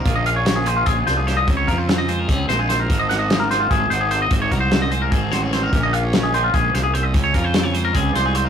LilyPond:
<<
  \new Staff \with { instrumentName = "Clean electric guitar" } { \time 7/8 \key bes \minor \tempo 4 = 148 bes'16 ees''16 f''16 des''8 aes'16 c''16 f'16 aes'8 c''16 aes'16 c''16 ees''16 | r16 des''16 bes'16 c''8 ees''16 c''16 bes'16 aes'8 c''16 aes'16 c''16 bes'16~ | bes'16 ees''16 ges''16 ees''8 bes'16 c''16 f'16 aes'8 c''16 aes'16 c''16 ees''16 | r16 des''16 bes'16 c''8 ees''16 c''16 bes'16 aes'8 c''16 aes'16 c''16 bes'16~ |
bes'16 ees''16 f''16 des''8 aes'16 c''16 f'16 aes'8 c''16 aes'16 c''16 ees''16 | r16 des''16 bes'16 c''8 des''16 c''16 bes'16 aes'8 c''16 aes'16 c''16 bes'16 | }
  \new Staff \with { instrumentName = "Clean electric guitar" } { \time 7/8 \key bes \minor << { <bes des' f' aes'>8 f'8 des'8 aes'8 des'8 f'8 des'8 | c'8 f'8 c'8 c''8 c'8 ees'16 f'16 c'8 | c'8 ees'16 ges'16 c'8 c''8 c'8 ges'8 c'8 | c'8 ges'8 c'8 c''8 c'8 ges'8 c'8 |
des'8 f'8 des'8 aes'2 | c'8 f'8 c'8 c''8 c'8 f'8 c'8 | } \\ { bes,4. bes4 f4 | des4. aes4 aes,4 | aes,4. aes4 ees4 | aes,4. aes4 ees4 |
bes,4. bes8 aes,8 bes,8 c8 | des4. aes4 aes,4 | } >> }
  \new Staff \with { instrumentName = "Fingered electric bass" } { \clef bass \time 7/8 \key bes \minor bes,,2 bes,,8 c,4 | des,8 f,4. des,8 bes,,4 | aes,,2 aes,,8 aes,,4 | aes,,8 c,4. aes,,8 a,,4 |
bes,,2 bes,,8 c,4 | des,8 f,4. des,8 c,4 | }
  \new DrumStaff \with { instrumentName = "Drums" } \drummode { \time 7/8 <hh bd>8 hh8 <hh sn>8 hh8 <hh bd>8 <hh sn>8 <hh sn>8 | <hh bd>8 <hh bd>8 <hh sn>8 hh8 <hh bd>8 <hh sn>8 <hh sn>8 | <hh bd>8 <hh sn>8 <hh sn>8 <hh sn>8 <hh bd>8 hh8 hh8 | <hh bd>8 <hh bd>8 <hh sn>8 hh8 <hh bd>8 <hh sn>8 <hh sn>8 |
<hh bd>8 hh8 <hh sn>8 hh8 <hh bd>8 <hh sn>8 hh8 | <hh bd>8 <hh bd>8 <hh sn>8 hh8 <hh bd>8 <hh sn>8 hh8 | }
>>